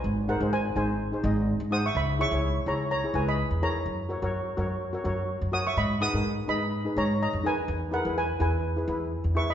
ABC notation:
X:1
M:4/4
L:1/16
Q:"Swing 16ths" 1/4=126
K:G#m
V:1 name="Steel pan"
[=cg]2 [Af]2 [^Bg]2 [Bg]8 [fd'] [e^c'] | [eb]2 [ec']4 [ca]2 [ca]2 [Bg] [db]3 [ca]2- | [ca]2 z12 [fd'] [ec'] | [db]2 [fd']4 [db]4 [ca]2 [da]2 [Bg]2- |
[Bg]2 [Af]2 [Bg]2 [Bg]8 [ec'] [db] |]
V:2 name="Steel pan"
z2 [DG^B] [DGB]2 z [DGB]2 z [DGB] [DGd]2 z2 [DGB]2 | z2 [EGc] [EGc]2 z [EGc]2 z [EGc] [EGB]2 z2 [EGA]2 | z2 [FAc] [FAc]2 z [FAc]2 z [FAc] [FAc]2 z2 [FAc]2 | z2 [DGB] [DGA]2 z [DGB]2 z [DGB] [DGc]2 z2 [DGA]2 |
z2 [EGB] [EGB]2 z [EGB]2 z [EGB] [EGB]2 z2 [EGB]2 |]
V:3 name="Upright bass" clef=bass
G,,,3 G,,,3 G,,,4 G,,,3 G,,3 | C,,3 C,,3 C,,4 C,,3 E,,3 | F,,3 F,,3 F,,4 F,,3 F,,3 | G,,3 G,,3 G,,4 G,,3 ^E,,3 |
E,,3 E,,3 E,,4 E,,3 E,,3 |]